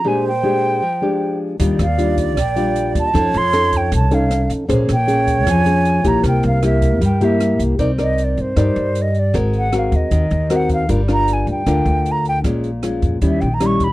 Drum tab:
HH |--------|xxxxxxxx|xxxxxxxx|xxxxxxxx|
SD |--------|-r--r---|r-r---r-|-r--r---|
BD |--------|o--oo--o|o--oo---|o--oo--o|

HH |xxxxxxxx|xxxxxxxx|xxxxxxxx|xxxxxxxx|
SD |r-r---r-|-r--r---|r-r---r-|-r--r---|
BD |o--oo---|o---o---|o--oo--o|o---o---|

HH |xxxxxxxx|
SD |r-r---r-|
BD |o--oo--o|